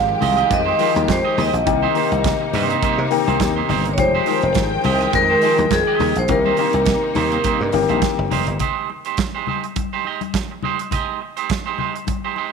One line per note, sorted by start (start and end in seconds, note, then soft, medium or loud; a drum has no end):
0.00 0.13 G#1 medium
0.00 1.64 D#3 medium
0.00 0.78 F3 medium
0.00 0.79 G#3 medium
0.00 1.64 G#3 medium
0.00 0.79 D#4 medium
0.00 1.64 G4 medium
0.00 1.67 G4 medium
0.00 0.55 F5 medium
0.08 muted clean electric guitar stroke medium
0.21 0.42 C2 loud
0.21 0.37 G#3 medium
0.21 0.37 D#4 medium
0.21 0.36 G4 medium
0.21 0.36 D#5 medium
0.21 open hi-hat medium
0.21 muted conga soft
0.21 high conga medium
0.21 low conga medium
0.37 0.49 G#3 medium
0.37 0.49 D#4 medium
0.37 0.50 G4 medium
0.37 0.51 D#5 medium
0.37 closed hi-hat soft
0.50 0.71 F2 loud
0.50 1.12 D#5 loud
0.50 muted clean electric guitar stroke soft
0.50 kick loud
0.50 closed hi-hat medium
0.50 high conga medium
0.65 0.78 G#3 soft
0.65 0.78 D#4 medium
0.65 0.79 G4 medium
0.65 0.79 C5 medium
0.78 1.47 F3 medium
0.78 1.47 G#3 medium
0.78 1.00 G#3 medium
0.78 1.48 D#4 medium
0.78 0.95 D#4 medium
0.78 0.95 G4 medium
0.78 1.48 A#4 medium
0.78 0.94 C5 loud
0.78 open hi-hat medium
0.78 muted conga soft
0.95 1.08 D#2 medium
0.95 muted clean electric guitar stroke soft
0.95 closed hi-hat soft
0.95 high conga medium
1.08 1.20 F2 loud
1.08 1.40 C5 medium
1.08 muted clean electric guitar stroke soft
1.08 kick loud
1.08 snare loud
1.08 closed hi-hat medium
1.08 muted conga soft
1.24 1.35 G#3 medium
1.24 1.36 D#4 medium
1.24 1.37 G4 medium
1.24 1.37 D#5 medium
1.37 1.49 D#2 medium
1.37 1.54 G#3 medium
1.37 1.53 D#4 medium
1.37 1.53 G4 medium
1.37 1.53 D#5 medium
1.37 open hi-hat medium
1.37 muted conga soft
1.37 high conga medium
1.37 low conga medium
1.41 3.09 D#5 medium
1.53 1.63 A#1 medium
1.53 muted clean electric guitar stroke soft
1.53 closed hi-hat soft
1.66 1.87 C2 loud
1.66 3.95 C3 medium
1.66 1.89 D#3 medium
1.66 3.95 A#3 medium
1.66 1.90 A#3 medium
1.66 1.90 C4 medium
1.66 3.95 D#4 medium
1.66 1.90 G4 medium
1.66 muted clean electric guitar stroke soft
1.66 kick loud
1.66 closed hi-hat medium
1.66 muted conga soft
1.66 low conga medium
1.83 1.94 A#3 medium
1.83 1.94 D#4 medium
1.83 1.95 G4 medium
1.83 1.95 C5 medium
1.95 2.85 D#3 medium
1.95 2.12 A#3 medium
1.95 2.85 A#3 medium
1.95 2.85 C4 medium
1.95 2.12 D#4 medium
1.95 2.11 G4 medium
1.95 2.85 G4 medium
1.95 2.11 C5 medium
1.95 open hi-hat medium
1.95 muted conga soft
2.12 2.32 C2 medium
2.12 muted clean electric guitar stroke soft
2.12 closed hi-hat soft
2.24 muted clean electric guitar stroke soft
2.24 kick loud
2.24 snare loud
2.24 closed hi-hat medium
2.41 muted clean electric guitar stroke soft
2.53 2.74 G2 loud
2.53 2.70 A#3 medium
2.53 2.69 D#4 medium
2.53 2.69 G4 loud
2.53 2.69 C5 loud
2.53 open hi-hat medium
2.53 muted conga soft
2.53 high conga medium
2.53 low conga medium
2.70 2.81 A#3 soft
2.70 2.82 D#4 medium
2.70 2.82 G4 medium
2.70 2.83 C5 medium
2.70 closed hi-hat soft
2.82 3.03 A#3 medium
2.82 2.99 D#4 medium
2.82 2.98 G4 loud
2.82 2.98 C5 medium
2.82 muted slap bass stroke soft
2.82 kick loud
2.82 closed hi-hat medium
2.82 muted conga soft
2.82 high conga medium
2.98 3.07 C3 medium
2.98 muted clean electric guitar stroke soft
3.10 3.79 D#3 medium
3.10 3.79 A#3 medium
3.10 3.79 C4 medium
3.10 3.79 G4 medium
3.10 muted clean electric guitar stroke medium
3.10 open hi-hat medium
3.10 muted conga soft
3.27 3.36 C2 medium
3.27 3.39 A#3 medium
3.27 3.40 D#4 medium
3.27 3.40 G4 medium
3.27 3.40 C5 medium
3.27 closed hi-hat soft
3.27 high conga medium
3.40 3.61 D#2 medium
3.40 muted clean electric guitar stroke soft
3.40 kick loud
3.40 snare loud
3.40 closed hi-hat medium
3.56 3.68 A#3 medium
3.56 3.69 D#4 medium
3.56 3.69 G4 medium
3.56 3.70 C5 medium
3.69 3.98 G1 medium
3.69 3.90 A#3 medium
3.69 3.85 D#4 medium
3.69 3.85 G4 medium
3.69 3.84 C5 medium
3.69 open hi-hat medium
3.69 high conga medium
3.69 low conga medium
3.85 muted clean electric guitar stroke soft
3.85 closed hi-hat medium
3.94 4.21 F3 medium
3.94 6.27 G#3 medium
3.94 3.99 C#5 medium
3.98 4.19 F1 loud
3.98 6.27 D#3 medium
3.98 4.21 G#3 medium
3.98 4.21 D#4 medium
3.98 4.21 G4 medium
3.98 5.10 C5 loud
3.98 6.27 G5 medium
3.98 muted clean electric guitar stroke soft
3.98 kick loud
3.98 closed hi-hat medium
3.98 muted conga soft
3.98 low conga medium
4.15 4.26 G#3 medium
4.15 4.26 D#4 medium
4.15 4.27 G4 medium
4.15 4.27 C5 medium
4.26 5.16 F3 medium
4.26 5.16 G#3 medium
4.26 4.44 G#3 medium
4.26 5.16 D#4 medium
4.26 4.42 D#4 medium
4.26 4.42 G4 medium
4.26 5.17 A#4 medium
4.26 4.42 C5 medium
4.26 open hi-hat medium
4.26 muted conga soft
4.42 4.52 F1 loud
4.42 muted clean electric guitar stroke medium
4.42 closed hi-hat soft
4.55 4.76 G#1 medium
4.55 muted clean electric guitar stroke soft
4.55 kick loud
4.55 snare loud
4.55 closed hi-hat medium
4.72 muted clean electric guitar stroke soft
4.84 5.05 C2 loud
4.84 5.01 G#3 medium
4.84 5.00 D#4 medium
4.84 5.00 G4 loud
4.84 4.99 D#5 loud
4.84 open hi-hat medium
4.84 high conga medium
4.84 low conga medium
5.01 5.12 G#3 medium
5.01 5.12 D#4 medium
5.01 5.13 G4 medium
5.01 5.14 D#5 medium
5.01 closed hi-hat soft
5.13 5.34 F2 loud
5.13 5.74 A#4 loud
5.13 muted clean electric guitar stroke soft
5.13 kick loud
5.13 closed hi-hat medium
5.13 high conga medium
5.29 5.41 G#3 soft
5.29 5.42 D#4 medium
5.29 5.42 G4 medium
5.29 5.42 C5 medium
5.42 6.10 F3 medium
5.42 5.63 G#3 medium
5.42 6.10 G#3 medium
5.42 5.59 D#4 medium
5.42 6.11 D#4 medium
5.42 5.58 G4 medium
5.42 6.11 G#4 medium
5.42 5.58 C5 loud
5.42 open hi-hat medium
5.58 5.68 D#2 medium
5.58 muted clean electric guitar stroke soft
5.58 closed hi-hat soft
5.58 high conga medium
5.71 5.82 F2 loud
5.71 6.18 G#4 medium
5.71 muted clean electric guitar stroke soft
5.71 kick loud
5.71 snare loud
5.71 closed hi-hat medium
5.87 5.99 G#3 medium
5.87 5.99 D#4 medium
5.87 6.00 G4 medium
5.87 6.00 D#5 medium
5.99 6.12 D#2 medium
5.99 6.17 G#3 medium
5.99 6.16 D#4 medium
5.99 6.16 G4 medium
5.99 6.17 D#5 medium
5.99 open hi-hat medium
5.99 muted conga soft
5.99 high conga medium
5.99 low conga medium
6.16 6.25 A#1 medium
6.16 6.31 C5 medium
6.16 muted clean electric guitar stroke soft
6.16 closed hi-hat medium
6.28 6.49 C2 loud
6.28 8.58 C3 medium
6.28 6.52 D#3 medium
6.28 8.58 A#3 medium
6.28 6.52 A#3 medium
6.28 6.53 C4 medium
6.28 8.58 D#4 medium
6.28 6.53 G4 medium
6.28 8.00 A#4 medium
6.28 muted clean electric guitar stroke soft
6.28 kick loud
6.28 closed hi-hat medium
6.28 muted conga soft
6.28 low conga medium
6.45 6.56 A#3 medium
6.45 6.57 D#4 medium
6.45 6.57 G4 medium
6.45 6.58 C5 medium
6.45 high conga medium
6.57 7.47 D#3 medium
6.57 6.75 A#3 medium
6.57 7.48 A#3 medium
6.57 7.48 C4 medium
6.57 6.74 D#4 medium
6.57 6.73 G4 medium
6.57 7.48 G4 medium
6.57 6.73 C5 medium
6.57 open hi-hat medium
6.73 6.95 C2 medium
6.73 muted clean electric guitar stroke medium
6.73 closed hi-hat soft
6.85 muted clean electric guitar stroke soft
6.85 kick loud
6.85 snare loud
6.85 closed hi-hat medium
7.03 muted clean electric guitar stroke medium
7.15 7.37 D#2 loud
7.15 7.32 A#3 medium
7.15 7.31 D#4 medium
7.15 7.31 G4 medium
7.15 7.31 C5 medium
7.15 open hi-hat medium
7.15 high conga medium
7.15 low conga medium
7.32 7.43 A#3 medium
7.32 7.43 D#4 soft
7.32 7.44 G4 medium
7.32 7.44 C5 medium
7.32 closed hi-hat soft
7.44 7.65 A#3 medium
7.44 7.60 D#4 medium
7.44 7.60 G4 medium
7.44 7.59 C5 medium
7.44 kick loud
7.44 closed hi-hat medium
7.44 high conga medium
7.60 7.70 G2 medium
7.60 muted clean electric guitar stroke soft
7.72 7.85 G1 medium
7.72 8.41 D#3 medium
7.72 8.42 A#3 medium
7.72 8.42 C4 medium
7.72 8.42 G4 medium
7.72 muted clean electric guitar stroke soft
7.72 open hi-hat medium
7.72 muted conga soft
7.89 7.99 A#1 medium
7.89 8.01 A#3 soft
7.89 8.01 D#4 medium
7.89 8.02 G4 medium
7.89 8.02 C5 medium
7.89 closed hi-hat soft
7.89 high conga medium
8.02 muted clean electric guitar stroke soft
8.02 kick loud
8.02 snare loud
8.02 closed hi-hat medium
8.18 8.28 G1 medium
8.18 muted clean electric guitar stroke soft
8.31 8.43 F1 medium
8.31 8.52 A#3 medium
8.31 8.47 D#4 medium
8.31 8.47 G4 medium
8.31 8.46 C5 medium
8.31 open hi-hat medium
8.31 high conga medium
8.31 low conga medium
8.47 8.57 G1 medium
8.47 muted clean electric guitar stroke soft
8.47 closed hi-hat medium
8.59 8.87 G#3 medium
8.59 8.87 D#4 medium
8.59 8.88 G4 medium
8.59 8.88 C5 medium
8.59 kick medium
8.59 closed hi-hat medium
8.59 low conga medium
8.89 muted clean electric guitar stroke soft
8.89 muted conga soft
9.05 9.18 G#3 soft
9.05 9.18 D#4 medium
9.05 9.18 G4 medium
9.05 9.19 C5 medium
9.05 closed hi-hat soft
9.17 muted clean electric guitar stroke soft
9.17 kick loud
9.17 snare loud
9.17 closed hi-hat medium
9.17 muted conga soft
9.35 9.46 G#3 medium
9.35 9.47 D#4 medium
9.35 9.47 G4 medium
9.35 9.48 C5 medium
9.47 9.65 G#3 medium
9.47 9.64 D#4 medium
9.47 9.64 G4 medium
9.47 9.63 C5 medium
9.47 high conga medium
9.47 low conga medium
9.64 muted clean electric guitar stroke soft
9.64 closed hi-hat soft
9.76 muted clean electric guitar stroke soft
9.76 kick loud
9.76 closed hi-hat medium
9.76 muted conga soft
9.76 high conga medium
9.93 10.04 G#3 medium
9.93 10.05 D#4 medium
9.93 10.05 G4 medium
9.93 10.07 C5 medium
10.05 10.23 G#3 medium
10.05 10.22 D#4 medium
10.05 10.21 G4 medium
10.05 10.22 D#5 medium
10.05 muted conga soft
10.21 closed hi-hat soft
10.21 high conga medium
10.34 muted clean electric guitar stroke soft
10.34 kick loud
10.34 snare loud
10.34 closed hi-hat medium
10.34 muted conga soft
10.51 muted clean electric guitar stroke soft
10.63 10.84 G#3 medium
10.63 10.79 D#4 medium
10.63 10.79 G4 medium
10.63 10.79 C5 medium
10.63 muted conga soft
10.63 high conga medium
10.63 low conga medium
10.79 muted clean electric guitar stroke soft
10.79 closed hi-hat medium
10.91 11.19 G#3 medium
10.91 11.19 D#4 medium
10.91 11.19 G4 medium
10.91 11.19 D#5 medium
10.91 kick loud
10.91 closed hi-hat medium
10.91 muted conga soft
10.91 low conga medium
11.21 muted clean electric guitar stroke soft
11.37 11.49 G#3 medium
11.37 11.49 D#4 medium
11.37 11.49 G4 medium
11.37 11.49 C5 medium
11.37 closed hi-hat soft
11.50 muted clean electric guitar stroke soft
11.50 kick loud
11.50 snare loud
11.50 closed hi-hat medium
11.50 muted conga soft
11.66 11.77 G#3 medium
11.66 11.78 D#4 medium
11.66 11.78 G4 medium
11.66 11.79 C5 medium
11.78 11.96 G#3 medium
11.78 11.95 D#4 medium
11.78 11.94 G4 medium
11.78 11.94 C5 medium
11.78 muted conga soft
11.78 high conga medium
11.78 low conga medium
11.95 muted clean electric guitar stroke soft
11.95 closed hi-hat soft
12.07 muted clean electric guitar stroke soft
12.07 kick loud
12.07 closed hi-hat medium
12.07 muted conga soft
12.07 high conga medium
12.25 12.35 G#3 medium
12.25 12.36 D#4 medium
12.25 12.37 G4 medium
12.25 12.37 C5 medium
12.36 12.52 G#3 medium
12.36 12.52 D#4 medium
12.36 12.52 G4 medium
12.36 12.52 C5 medium
12.36 muted conga soft